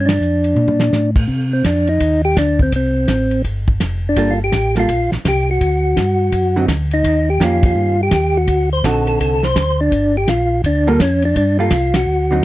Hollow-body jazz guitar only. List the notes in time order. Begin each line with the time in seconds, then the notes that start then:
4.17 G3 A#3 F4 A4
4.77 G3 A#3 F4 A4
6.56 D3 F#3 C4 D#4
7.40 D#3 A#3 C#4 G4
8.84 D3 C4 D#4 F#4
10.87 G3 A#3 F4 A4
11.59 G3 A#3 F4 A4
12.31 D3 F#3 C4 D#4